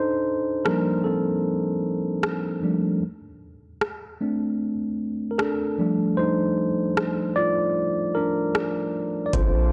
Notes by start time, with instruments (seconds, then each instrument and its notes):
Already playing: tine electric piano D4 D#4 A4 C5
0.65 tine electric piano F3 G3 A#3 D4 A#4, cross-stick
1.04 tine electric piano C4 A4
2.23 cross-stick
2.63 tine electric piano F3 G3 A3 D4
3.81 cross-stick
4.21 tine electric piano A3 C4 D4
5.31 tine electric piano A#4
5.38 tine electric piano D4 A4, cross-stick
5.78 tine electric piano F3 G3 A3 D4
6.17 tine electric piano D#4 C5
6.97 cross-stick
7.36 tine electric piano F4 D5
8.15 tine electric piano D4 A#4
8.55 cross-stick
9.26 tine electric piano D5
9.33 808-style bass A#1, tine electric piano C4 D4 F4 A4 C5, analog synth pad C5 F5 A5 D6, kick, closed hi-hat